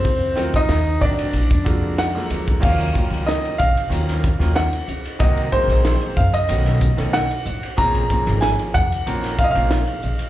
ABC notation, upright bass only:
X:1
M:4/4
L:1/16
Q:1/4=93
K:Fphr
V:1 name="Upright bass" clef=bass
F,,2 E,, z E,,2 =A,, z B,,, F,,4- F,, =D,,2 | [K:Ebdor] E,,2 z D,,2 z B,,, z E,,3 E,,2 z D,, z | C,,2 z B,,,2 z G,, z =B,,,3 B,,,2 z =A,,, z | B,,,2 z A,,,2 z F,, z B,,,3 B,,,2 z B,,, z |]